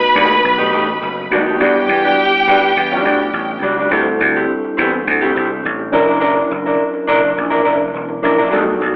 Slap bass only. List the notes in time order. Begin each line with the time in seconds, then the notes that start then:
0.16 D#2
0.44 B1
0.73 A1
1.02 F#1
1.31 D#2
1.60 E2
1.89 E2
2.48 G2
2.77 E2
3.05 D2
3.33 A1
3.62 C#2
3.91 D2
4.20 D2
4.78 E2
5.07 D2
5.37 C2
5.65 A1
5.94 F#1
6.51 F#1
7.09 F#1
7.38 A#1
7.67 F#1
7.95 E1
8.24 A#1
8.53 B1
8.81 B1